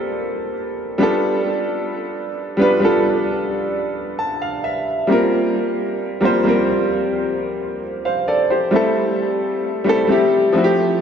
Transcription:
grand piano
Already playing: G3 A#3 C4 F4 A4
0.98 G3 B3 D4 F4
1.03 A4
2.57 G3 B3 D4 F4
2.62 B4
2.80 G3 B3 D4 F4
2.85 A4
4.19 A5
4.42 F5
4.64 E5
5.07 G3 A#3 C4 F4
5.12 A#4
6.21 G3 A#3 C4 F4
6.25 C5
6.43 G3 A#3 C4 F4
6.48 A#4
8.05 C5 F5
8.28 A4 D5
8.50 G4 C5
8.71 G3 A3 C4 E4
8.76 A4
9.84 G3 A3 C4 E4
9.89 A4
10.07 G3 A3 C4 E4
10.12 G4
10.53 F3 A3 C4 E4
10.58 F#4
10.64 G4

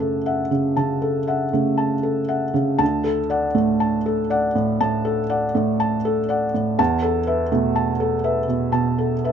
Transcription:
felt piano
Already playing: F#2 C#3 A3 E5 F#5 A5
0.00 A4
0.26 E5 F#5
0.51 C#3
0.77 C#3 A5
1.02 A4
1.27 E5 F#5
1.53 C#3 A3
1.78 A5
2.03 A4
2.28 E5 F#5
2.54 C#3
2.78 D2 A5
3.04 A4
3.30 D5 F#5
3.55 A2 A3
3.80 A5
4.06 A4
4.30 D5 F#5
4.55 A2
4.81 A2 A5
5.05 A4
5.30 D5 F#5
5.55 A2 A3
5.80 A5
6.05 A4
6.29 D5 F#5
6.54 A2
6.79 E2 A5
7.03 A4
7.27 B4 E5
7.52 B2 A3
7.76 A5
8.00 A4
8.24 B4 E5
8.48 B2
8.72 B2 A5
8.98 A4
9.24 B4 E5

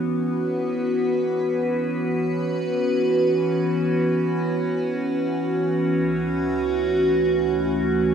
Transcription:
ambient pad
Already playing: E3 B3 C#4 F#4 B4 C#5
5.90 C#2
6.72 A3
8.05 C#5

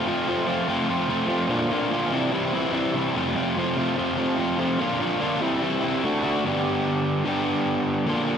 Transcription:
overdriven electric guitar
0.07 F3 A3 C4 F4
0.28 F3 A3 C4 F4
0.47 F3 A3 C4 F4
0.68 F3 A3 C4 F4
0.88 F3 A3 C4 F4
1.09 F3 A3 C4 F4
1.27 F3 A3 C4 F4
1.49 A#2 D3 A#3 D4 F4
1.71 A#2 D3 A#3 D4 F4
1.91 A#2 D3 A#3 D4 F4
2.12 C3 E3 G3 C4 E4
2.32 C3 E3 G3 C4 E4
2.53 C3 E3 G3 C4 E4
2.73 C3 E3 G3 C4 E4
2.95 C3 E3 G3 C4 E4
3.15 F2 C3 F3 A3 C4 F4
3.35 F2 C3 F3 A3 C4 F4
3.56 F2 C3 F3 A3 C4 F4
3.76 F2 C3 F3 A3 C4 F4
3.97 F2 C3 F3 A3 C4 F4
4.17 F2 C3 F3 A3 C4 F4
4.37 F2 C3 F3 A3 C4 F4
4.57 F2 C3 F3 A3 C4 F4
4.79 A#2 D3 A#3 D4 F4
5.00 A#2 D3 A#3 D4 F4
5.20 A#2 D3 A#3 D4 F4
5.41 C3 E3 G3 C4 E4
5.62 C3 E3 G3 C4 E4
5.82 C3 E3 G3 C4 E4
6.04 D3 A3 D4 F#4
6.23 D3 A3 D4 F#4
6.44 G2 D3 G3 B3 D4 G4
7.24 G2 D3 G3 B3 D4 G4
8.07 A#2 D3 A#3 D4 F4

